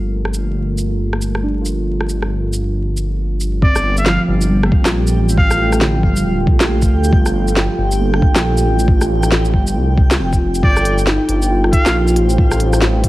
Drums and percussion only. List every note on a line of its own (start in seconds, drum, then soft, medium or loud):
0.25 cross-stick medium
0.34 shaker medium
0.78 shaker soft
1.13 cross-stick medium
1.22 shaker medium
1.35 cross-stick medium
1.66 shaker medium
2.01 cross-stick medium
2.09 shaker soft
2.22 cross-stick medium
2.53 shaker soft
2.97 shaker medium
3.41 shaker soft
3.62 kick loud
3.76 cross-stick medium
3.76 shaker soft
3.97 shaker medium
4.06 snare loud
4.41 shaker medium
4.63 cross-stick medium
4.72 kick loud
4.85 cross-stick medium
4.85 snare loud
4.85 shaker medium
5.07 shaker soft
5.29 shaker medium
5.38 kick loud
5.51 cross-stick medium
5.51 shaker soft
5.73 cross-stick medium
5.73 shaker medium
5.81 snare loud
6.03 kick medium
6.16 shaker medium
6.47 kick loud
6.60 snare loud
6.60 shaker medium
6.82 kick medium
6.82 shaker soft
7.04 shaker medium
7.13 kick loud
7.26 cross-stick medium
7.26 shaker soft
7.48 shaker medium
7.57 snare loud
7.92 shaker medium
8.14 cross-stick medium
8.22 kick loud
8.36 cross-stick medium
8.36 snare loud
8.36 shaker medium
8.57 shaker soft
8.79 shaker medium
8.88 kick loud
9.01 cross-stick medium
9.01 shaker soft
9.23 cross-stick medium
9.23 shaker medium
9.32 snare loud
9.45 shaker soft
9.54 kick medium
9.67 shaker medium
9.97 kick loud
10.11 snare loud
10.11 shaker medium
10.33 kick medium
10.33 shaker soft
10.55 shaker medium
10.63 kick loud
10.77 cross-stick medium
10.77 shaker soft
10.85 open hi-hat medium
10.98 shaker medium
11.07 snare loud
11.29 open hi-hat medium
11.42 shaker medium
11.64 cross-stick medium
11.73 kick loud
11.73 open hi-hat medium
11.86 cross-stick medium
11.86 snare loud
11.86 shaker medium
12.08 shaker soft
12.16 open hi-hat medium
12.30 shaker medium
12.38 kick loud
12.51 cross-stick medium
12.51 shaker soft
12.60 open hi-hat medium
12.73 cross-stick medium
12.73 shaker medium
12.82 snare loud
13.04 kick medium
13.04 open hi-hat medium